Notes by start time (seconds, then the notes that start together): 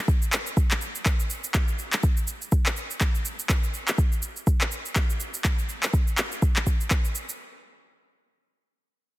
0.08 kick, shaker
0.22 shaker
0.33 clap, shaker
0.47 shaker
0.57 kick, shaker
0.71 clap, shaker
0.81 shaker
0.95 shaker
1.06 kick, clap, shaker
1.20 shaker
1.30 shaker
1.44 shaker
1.54 kick, clap, shaker
1.68 shaker
1.79 shaker
1.93 clap, shaker
2.03 kick, shaker
2.17 shaker
2.28 shaker
2.42 shaker
2.52 kick, shaker
2.66 clap, shaker
2.77 shaker
2.91 shaker
3.01 kick, clap, shaker
3.15 shaker
3.25 shaker
3.39 shaker
3.50 kick, clap, shaker
3.64 shaker
3.74 shaker
3.88 clap, shaker
3.98 kick, shaker
4.12 shaker
4.22 shaker
4.36 shaker
4.47 kick, shaker
4.61 clap, shaker
4.72 shaker
4.85 shaker
4.96 kick, clap, shaker
5.10 shaker
5.20 shaker
5.34 shaker
5.45 kick, clap, shaker
5.59 shaker
5.69 shaker
5.83 clap, shaker
5.93 kick, shaker
6.08 shaker
6.18 clap, shaker
6.32 shaker
6.42 kick, shaker
6.56 clap, shaker
6.67 kick, shaker
6.81 shaker
6.91 kick, clap, shaker
7.05 shaker
7.15 shaker
7.29 shaker